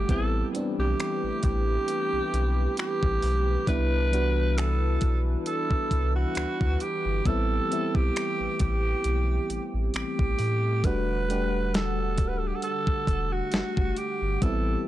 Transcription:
Already playing: analog synth pad A3, downlifter
0.08 sub bass A1, analog synth pad E3 G4 B4, fm electric piano G3 B3 C4 E4, alto saxophone A4, kick, closed hi-hat
0.53 fm electric piano G3 B3 C4 D4, closed hi-hat
0.79 sub bass B1, alto saxophone G4
1.00 finger snap, closed hi-hat
1.23 sub bass A1
1.43 sub bass A1, alto saxophone G4, kick, closed hi-hat
1.88 closed hi-hat
2.13 sub bass B1
2.33 sub bass B1, closed hi-hat
2.77 alto saxophone G4, finger snap, closed hi-hat
3.03 sub bass A1, kick
3.22 sub bass B1, open hi-hat
3.67 sub bass C2, fm electric piano G3 B3 D4 E4, analog synth pad D4 E4, alto saxophone B4, kick, closed hi-hat
4.11 fm electric piano G3 B3 D4 F#4, closed hi-hat
4.58 alto saxophone A4, finger snap, closed hi-hat
5.01 sub bass B1, kick, closed hi-hat
5.46 alto saxophone A4, closed hi-hat
5.71 kick
5.91 sub bass C2, kick, closed hi-hat
6.16 alto saxophone F#4
6.35 sub bass D2, finger snap, closed hi-hat
6.61 sub bass D2, kick
6.80 alto saxophone G4, closed hi-hat
7.05 sub bass G1
7.25 sub bass A1, fm electric piano G3 B3 C4 E4, analog synth pad A3 G4, alto saxophone A4, kick, closed hi-hat
7.70 fm electric piano G3 B3 C4 E4, closed hi-hat
7.95 sub bass B1, alto saxophone G4, kick
8.16 finger snap, closed hi-hat
8.40 sub bass A1
8.59 sub bass A1, alto saxophone G4, kick, closed hi-hat
9.04 sub bass B1, analog synth pad C4, closed hi-hat
9.50 sub bass A1, closed hi-hat
9.74 sub bass A1
9.94 sub bass A1, alto saxophone G4, finger snap, closed hi-hat
10.19 sub bass A1, kick
10.39 sub bass A2, open hi-hat
10.83 sub bass E1, analog synth pad D3 G3 F#5, fm electric piano G3 A3 D4 F#4, alto saxophone B4, kick, closed hi-hat
11.28 fm electric piano G3 A3 D4 G4, closed hi-hat
11.74 alto saxophone A4, snare, closed hi-hat
12.18 sub bass D1, kick, closed hi-hat
12.28 alto saxophone B4
12.38 alto saxophone A4
12.47 alto saxophone G4
12.56 alto saxophone A4
12.62 alto saxophone A4, closed hi-hat
12.87 kick
13.07 sub bass E1, kick, closed hi-hat
13.33 alto saxophone F#4
13.52 sub bass F#1, snare, closed hi-hat
13.77 sub bass F#1, kick
13.96 alto saxophone G4, closed hi-hat
14.22 sub bass G1
14.41 sub bass A1, analog synth pad E3 A3 G4 B4, fm electric piano G3 B3 C4 E4, alto saxophone A4, kick, closed hi-hat

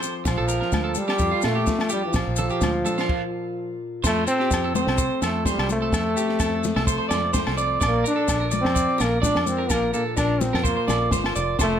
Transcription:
Already playing: steel-string acoustic guitar F2 F3 C4 A4, clean electric guitar C5
0.03 muted steel-string acoustic guitar stroke, maracas
0.25 fingered electric bass A#1, trombone F3, steel-string acoustic guitar D4 F4, muted steel-string acoustic guitar stroke, muted clean electric guitar stroke, kick, snare, muted conga, low agogo, maracas
0.38 fingered electric bass A#1, clean electric guitar A4
0.48 clean electric guitar A#4, muted conga, maracas
0.61 clean electric guitar A#4, snare
0.72 fingered electric bass D2, steel-string acoustic guitar F3, kick, snare, muted conga, high conga, low agogo, maracas
0.84 clean electric guitar A4
0.95 trombone G3, steel-string acoustic guitar F4, high conga, maracas
1.08 clean electric guitar G4, snare, low agogo, maracas
1.19 fingered electric bass F2, steel-string acoustic guitar F2 F4, kick, maracas
1.32 clean electric guitar F4
1.42 fingered electric bass A#2, steel-string acoustic guitar F4, snare, muted conga, low agogo, maracas
1.46 trombone A3
1.55 clean electric guitar G4
1.66 steel-string acoustic guitar F3, kick, snare, high conga, maracas
1.79 snare, low agogo
1.89 trombone G3, steel-string acoustic guitar D4, clean electric guitar G4, maracas
2.05 trombone F3
2.13 fingered electric bass A#1, steel-string acoustic guitar A#2 A#3 D4 F4, kick, snare, muted conga, low agogo, maracas
2.28 fingered electric bass A#1
2.36 steel-string acoustic guitar F4, clean electric guitar A4, muted conga, low conga, maracas
2.50 clean electric guitar G4, maracas
2.61 fingered electric bass D2, steel-string acoustic guitar F3, kick, snare, muted conga, high conga, low agogo, maracas
2.86 steel-string acoustic guitar D4, clean electric guitar A4, high conga, maracas
2.98 clean electric guitar F4, snare, low agogo, maracas
3.09 kick, crash
4.04 fingered electric bass F2, steel-string acoustic guitar F2, trombone A3, clean electric guitar C5, kick, snare, crash, muted conga, low agogo, maracas
4.27 trombone C4, clean electric guitar A4, maracas
4.40 clean electric guitar G4, snare
4.51 fingered electric bass F2, steel-string acoustic guitar A3, kick, snare, low agogo, maracas
4.64 clean electric guitar A4
4.75 steel-string acoustic guitar F3, trombone C4, clean electric guitar C5, muted conga, high conga, maracas
4.87 fingered electric bass C2, snare, low agogo
4.98 clean electric guitar C5, muted steel-string acoustic guitar stroke, kick, maracas
5.22 fingered electric bass F2, steel-string acoustic guitar C3, trombone A3, clean electric guitar A4, snare, muted conga, low agogo, maracas
5.46 trombone G3, steel-string acoustic guitar A3, clean electric guitar C5, kick, snare, high conga, maracas
5.58 fingered electric bass C2, snare, low agogo
5.69 trombone A3, steel-string acoustic guitar C4, high conga, maracas
5.82 clean electric guitar A4
5.93 fingered electric bass F2, steel-string acoustic guitar F2, clean electric guitar A4, kick, snare, low agogo, maracas
6.17 steel-string acoustic guitar C4, clean electric guitar G4, maracas
6.29 snare
6.40 fingered electric bass F2, steel-string acoustic guitar A3, clean electric guitar A4, kick, snare, low agogo, maracas
6.64 steel-string acoustic guitar F3, snare, muted conga, high conga, maracas
6.76 fingered electric bass C2, clean electric guitar A4, snare, low agogo
6.87 steel-string acoustic guitar A4, clean electric guitar C5, kick, maracas
6.98 clean electric guitar C5
7.09 fingered electric bass F2, steel-string acoustic guitar C3, clean electric guitar D5, snare, low agogo, maracas
7.13 muted conga, high conga
7.33 steel-string acoustic guitar A3, clean electric guitar C5, kick, snare, high conga, maracas
7.47 fingered electric bass C2, snare, low agogo
7.57 steel-string acoustic guitar C4, clean electric guitar D5, maracas
7.81 fingered electric bass A#1, steel-string acoustic guitar A#2, trombone A#3, clean electric guitar D5, kick, snare, muted conga, low agogo, maracas
8.04 steel-string acoustic guitar D4, trombone D4, clean electric guitar A#4, maracas
8.16 clean electric guitar A4
8.28 fingered electric bass A#1, steel-string acoustic guitar A#3, kick, snare, low agogo, maracas
8.40 clean electric guitar A#4
8.51 steel-string acoustic guitar F3, clean electric guitar D5, muted conga, high conga, maracas
8.62 fingered electric bass F2, trombone C4, snare
8.66 low agogo
8.75 steel-string acoustic guitar F4, clean electric guitar D5, kick, maracas
8.98 fingered electric bass A#1, steel-string acoustic guitar F2, trombone A#3, clean electric guitar A#4, snare, muted conga, low agogo, maracas
9.22 steel-string acoustic guitar A#3, trombone D4, clean electric guitar D5, kick, snare, high conga, maracas
9.35 fingered electric bass F2, snare, low agogo
9.47 trombone C4, steel-string acoustic guitar D4, high conga, maracas
9.59 clean electric guitar A#4
9.70 fingered electric bass A#1, steel-string acoustic guitar A#2, trombone A#3, clean electric guitar A#4, kick, snare, low agogo, maracas
9.93 trombone A#3, steel-string acoustic guitar D4, clean electric guitar A4, maracas
10.17 fingered electric bass A#1, steel-string acoustic guitar A#3, trombone D4, clean electric guitar A#4, kick, snare, low agogo, maracas
10.41 steel-string acoustic guitar F3, trombone C4, snare, muted conga, high conga, maracas
10.53 fingered electric bass F2, clean electric guitar A#4, snare, low agogo
10.64 trombone A#3, steel-string acoustic guitar F4, clean electric guitar C5, kick, muted conga, maracas
10.77 clean electric guitar C5
10.88 fingered electric bass A#1, steel-string acoustic guitar F2, clean electric guitar D5, snare, muted conga, high conga, low agogo, maracas
11.11 fingered electric bass G1, steel-string acoustic guitar A#3, clean electric guitar C5, kick, snare, high conga, maracas
11.24 snare, low agogo
11.36 fingered electric bass F1, clean electric guitar D5, muted steel-string acoustic guitar stroke, maracas
11.59 fingered electric bass F1, steel-string acoustic guitar F2, trombone A3, clean electric guitar C5, kick, snare, muted conga, low agogo, maracas

